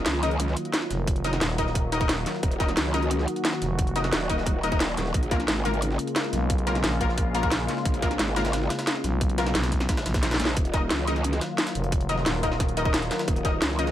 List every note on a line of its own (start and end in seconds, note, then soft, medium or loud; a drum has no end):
0.00 5.10 D#3 medium
0.00 5.10 F#3 medium
0.00 10.53 A#3 medium
0.00 2.39 F4 medium
0.06 0.55 C#2 loud
0.06 snare loud
0.06 closed hi-hat medium
0.06 closed hi-hat loud
0.23 0.28 D#4 medium
0.23 0.28 A#4 medium
0.23 0.28 D#5 loud
0.23 closed hi-hat medium
0.31 closed hi-hat soft
0.40 closed hi-hat loud
0.48 snare soft
0.57 closed hi-hat medium
0.65 closed hi-hat soft
0.74 snare loud
0.74 closed hi-hat loud
0.74 closed hi-hat medium
0.82 snare medium
0.82 snare soft
0.91 1.40 F1 loud
0.91 snare soft
0.91 closed hi-hat medium
1.07 kick loud
1.07 closed hi-hat loud
1.07 closed hi-hat medium
1.16 closed hi-hat soft
1.24 1.30 D#4 medium
1.24 1.30 A#4 medium
1.24 1.30 D#5 medium
1.24 snare soft
1.24 closed hi-hat medium
1.33 snare soft
1.33 snare medium
1.33 closed hi-hat soft
1.41 2.25 D#1 loud
1.41 snare loud
1.41 closed hi-hat medium
1.58 1.64 D#4 medium
1.58 1.64 A#4 medium
1.58 1.64 D#5 medium
1.58 kick medium
1.58 closed hi-hat medium
1.67 snare soft
1.75 kick loud
1.75 closed hi-hat loud
1.75 closed hi-hat medium
1.92 1.98 D#4 loud
1.92 1.98 A#4 medium
1.92 1.98 D#5 loud
1.92 closed hi-hat medium
2.01 2.09 D#4 medium
2.01 2.09 A#4 medium
2.01 2.09 D#5 medium
2.01 kick loud
2.01 closed hi-hat soft
2.09 snare loud
2.09 closed hi-hat loud
2.09 closed hi-hat medium
2.26 snare soft
2.26 closed hi-hat medium
2.35 snare medium
2.43 2.76 D#1 loud
2.43 5.12 F#4 medium
2.43 kick loud
2.43 closed hi-hat medium
2.51 closed hi-hat soft
2.60 2.69 D#4 medium
2.60 2.69 A#4 medium
2.60 2.69 D#5 medium
2.60 kick loud
2.60 snare soft
2.60 closed hi-hat medium
2.68 snare soft
2.68 closed hi-hat soft
2.77 3.26 C#2 loud
2.77 snare loud
2.77 closed hi-hat medium
2.94 2.99 D#4 medium
2.94 2.99 A#4 medium
2.94 2.99 D#5 loud
2.94 closed hi-hat medium
3.02 closed hi-hat soft
3.11 closed hi-hat loud
3.11 closed hi-hat medium
3.19 snare soft
3.28 closed hi-hat medium
3.36 closed hi-hat soft
3.45 snare loud
3.45 closed hi-hat medium
3.53 snare medium
3.53 snare soft
3.62 4.11 F1 medium
3.62 snare soft
3.62 closed hi-hat medium
3.79 kick loud
3.79 closed hi-hat medium
3.87 closed hi-hat soft
3.96 4.01 D#4 medium
3.96 4.01 A#4 medium
3.96 4.01 D#5 medium
3.96 snare soft
3.96 closed hi-hat medium
4.04 snare soft
4.04 closed hi-hat soft
4.13 4.62 D#1 loud
4.13 snare loud
4.13 closed hi-hat medium
4.29 4.35 D#4 medium
4.29 4.35 A#4 medium
4.29 4.35 D#5 medium
4.29 kick medium
4.29 closed hi-hat medium
4.38 snare soft
4.46 kick loud
4.46 closed hi-hat medium
4.63 4.96 D#1 loud
4.63 4.69 D#4 medium
4.63 4.69 A#4 medium
4.63 4.69 D#5 loud
4.63 closed hi-hat medium
4.72 4.80 D#4 medium
4.72 4.80 A#4 medium
4.72 4.80 D#5 medium
4.72 kick loud
4.72 closed hi-hat soft
4.80 snare loud
4.80 closed hi-hat medium
4.97 5.13 D#1 loud
4.97 snare soft
4.97 closed hi-hat medium
5.06 snare medium
5.14 5.47 A#1 loud
5.14 10.53 C#3 medium
5.14 10.53 G#3 medium
5.14 10.53 F4 medium
5.14 kick loud
5.14 closed hi-hat medium
5.23 closed hi-hat soft
5.31 5.40 A#3 medium
5.31 5.40 F4 medium
5.31 5.40 A#4 medium
5.31 kick loud
5.31 snare soft
5.31 closed hi-hat medium
5.40 snare soft
5.40 closed hi-hat soft
5.48 5.98 G#1 loud
5.48 snare loud
5.48 closed hi-hat medium
5.65 5.70 A#3 medium
5.65 5.70 F4 medium
5.65 5.70 A#4 loud
5.65 closed hi-hat medium
5.74 closed hi-hat soft
5.82 closed hi-hat medium
5.91 snare soft
5.99 closed hi-hat medium
6.07 closed hi-hat soft
6.16 snare loud
6.16 closed hi-hat medium
6.24 snare medium
6.24 snare soft
6.33 6.82 B1 loud
6.33 snare soft
6.33 closed hi-hat medium
6.50 kick loud
6.50 closed hi-hat medium
6.50 closed hi-hat loud
6.58 closed hi-hat soft
6.67 6.72 A#3 medium
6.67 6.72 F4 medium
6.67 6.72 A#4 medium
6.67 snare soft
6.67 closed hi-hat medium
6.75 snare soft
6.75 closed hi-hat soft
6.84 7.67 A#1 loud
6.84 snare loud
6.84 closed hi-hat medium
7.01 7.06 A#3 medium
7.01 7.06 F4 medium
7.01 7.06 A#4 medium
7.01 kick medium
7.01 closed hi-hat medium
7.09 snare soft
7.18 kick loud
7.18 closed hi-hat loud
7.18 closed hi-hat medium
7.35 7.40 A#3 loud
7.35 7.40 F4 medium
7.35 7.40 A#4 loud
7.35 closed hi-hat medium
7.43 7.52 A#3 medium
7.43 7.52 F4 medium
7.43 7.52 A#4 medium
7.43 kick loud
7.43 closed hi-hat soft
7.52 snare loud
7.52 closed hi-hat loud
7.52 closed hi-hat medium
7.68 snare soft
7.68 closed hi-hat medium
7.77 snare medium
7.85 8.18 A#1 loud
7.85 kick loud
7.85 closed hi-hat loud
7.85 closed hi-hat medium
7.94 closed hi-hat soft
8.02 8.11 A#3 medium
8.02 8.11 F4 medium
8.02 8.11 A#4 medium
8.02 kick loud
8.02 snare soft
8.02 closed hi-hat medium
8.11 snare soft
8.11 closed hi-hat soft
8.19 8.69 G#1 loud
8.19 snare loud
8.19 closed hi-hat medium
8.19 closed hi-hat loud
8.36 8.42 A#3 loud
8.36 8.42 F4 medium
8.36 8.42 A#4 loud
8.36 snare loud
8.36 closed hi-hat medium
8.45 snare loud
8.45 closed hi-hat medium
8.53 snare loud
8.53 closed hi-hat loud
8.53 closed hi-hat medium
8.62 snare soft
8.70 snare loud
8.70 closed hi-hat medium
8.79 snare loud
8.79 closed hi-hat medium
8.79 closed hi-hat soft
8.87 snare loud
8.87 closed hi-hat medium
8.87 closed hi-hat loud
8.96 snare medium
8.96 snare soft
9.04 9.54 B1 loud
9.04 snare soft
9.04 closed hi-hat medium
9.21 kick loud
9.21 closed hi-hat medium
9.21 closed hi-hat loud
9.30 closed hi-hat soft
9.38 9.43 A#3 medium
9.38 9.43 F4 medium
9.38 9.43 A#4 medium
9.38 snare loud
9.38 snare soft
9.38 closed hi-hat medium
9.46 snare medium
9.46 snare soft
9.46 closed hi-hat soft
9.55 9.88 B1 loud
9.55 snare loud
9.55 snare soft
9.55 closed hi-hat loud
9.55 closed hi-hat medium
9.63 snare loud
9.63 closed hi-hat medium
9.72 kick medium
9.72 snare soft
9.72 closed hi-hat medium
9.80 snare soft
9.80 snare medium
9.80 closed hi-hat medium
9.89 10.04 A#1 loud
9.89 kick loud
9.89 snare loud
9.89 closed hi-hat loud
9.89 closed hi-hat medium
9.97 snare loud
9.97 closed hi-hat medium
10.06 10.21 A#1 loud
10.06 snare loud
10.06 closed hi-hat medium
10.14 kick loud
10.14 snare loud
10.14 closed hi-hat medium
10.14 closed hi-hat soft
10.23 10.38 A#1 loud
10.23 snare medium
10.23 snare loud
10.23 closed hi-hat medium
10.23 closed hi-hat loud
10.31 snare loud
10.31 closed hi-hat medium
10.34 snare medium
10.40 10.55 A#1 loud
10.40 snare loud
10.40 closed hi-hat medium
10.45 snare loud
10.48 snare medium
10.57 10.89 D#1 loud
10.57 13.91 D#3 medium
10.57 13.91 F#3 medium
10.57 13.91 A#3 medium
10.57 13.91 F4 medium
10.57 kick loud
10.57 closed hi-hat loud
10.57 closed hi-hat medium
10.65 closed hi-hat soft
10.74 10.82 D#4 medium
10.74 10.82 A#4 medium
10.74 10.82 D#5 medium
10.74 kick loud
10.74 snare soft
10.74 closed hi-hat medium
10.90 11.40 C#2 loud
10.90 snare loud
10.90 closed hi-hat loud
10.90 closed hi-hat medium
11.07 11.13 D#4 medium
11.07 11.13 A#4 medium
11.07 11.13 D#5 loud
11.07 closed hi-hat medium
11.16 snare soft
11.16 closed hi-hat soft
11.24 closed hi-hat loud
11.24 closed hi-hat medium
11.33 snare soft
11.33 closed hi-hat soft
11.41 snare loud
11.41 closed hi-hat medium
11.58 snare loud
11.58 closed hi-hat loud
11.58 closed hi-hat medium
11.67 snare loud
11.67 closed hi-hat soft
11.67 closed hi-hat medium
11.75 12.25 F1 loud
11.75 closed hi-hat medium
11.84 closed hi-hat medium
11.92 kick loud
11.92 closed hi-hat loud
11.92 closed hi-hat medium
12.01 closed hi-hat soft
12.09 12.15 D#4 medium
12.09 12.15 A#4 medium
12.09 12.15 D#5 medium
12.09 closed hi-hat medium
12.18 snare soft
12.26 13.10 D#1 loud
12.26 snare loud
12.26 closed hi-hat medium
12.43 12.48 D#4 medium
12.43 12.48 A#4 medium
12.43 12.48 D#5 loud
12.43 kick medium
12.43 closed hi-hat medium
12.52 snare soft
12.60 kick loud
12.60 snare medium
12.60 closed hi-hat medium
12.60 closed hi-hat loud
12.69 closed hi-hat soft
12.77 12.82 D#4 medium
12.77 12.82 A#4 medium
12.77 12.82 D#5 loud
12.77 closed hi-hat medium
12.85 12.94 D#4 medium
12.85 12.94 A#4 medium
12.85 12.94 D#5 medium
12.85 kick loud
12.94 snare loud
12.94 closed hi-hat loud
12.94 closed hi-hat medium
13.02 closed hi-hat soft
13.11 snare soft
13.11 snare loud
13.11 closed hi-hat medium
13.19 snare loud
13.19 closed hi-hat medium
13.28 13.60 D#1 loud
13.28 kick loud
13.28 closed hi-hat medium
13.36 closed hi-hat soft
13.45 13.53 D#4 medium
13.45 13.53 A#4 medium
13.45 13.53 D#5 medium
13.45 kick loud
13.45 snare soft
13.45 closed hi-hat medium
13.62 13.91 C#2 loud
13.62 snare loud
13.62 closed hi-hat medium
13.79 13.84 D#4 medium
13.79 13.84 A#4 medium
13.79 13.84 D#5 loud
13.79 closed hi-hat medium
13.87 snare soft
13.87 closed hi-hat soft